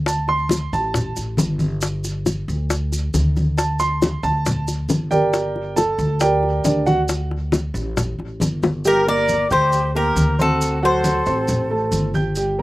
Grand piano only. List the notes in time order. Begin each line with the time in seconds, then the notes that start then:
0.07 A5
0.29 C6
0.73 A5
3.58 A5
3.80 C6
4.23 A5
5.11 G4 A#4 D5 G5
5.76 A4 A5
6.21 G4 A#4 D5 G5
6.64 D4 G4 A#4 D5
6.86 F#4 F#5
8.85 G3 G4 G5
9.07 A#3 A#4 A#5
9.51 G4 G5 G6
9.95 A#3 A#4 A#5
10.39 C4 C5 C6
10.82 F#3 F#4 F#5
11.26 C4 C5 C6
11.70 A3 A4 A5
12.14 G4 G5 G6
12.37 G3 G4 G5
12.59 A#3 A#4